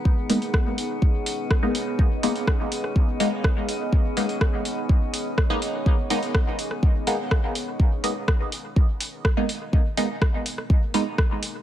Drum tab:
HH |--oo--o---o---o-|--oo--o---o---o-|--oo--o---o---o-|--oo--o---o---o-|
SD |----r-------r---|----r--r----r---|----r-------r---|----r--r----r---|
BD |o---o---o---o---|o---o---o---o---|o---o---o---o---|o---o---o---o---|

HH |--o---o---o---o-|--o---o---o---o-|
SD |----r-------r---|----r--r----r---|
BD |o---o---o---o---|o---o---o---o---|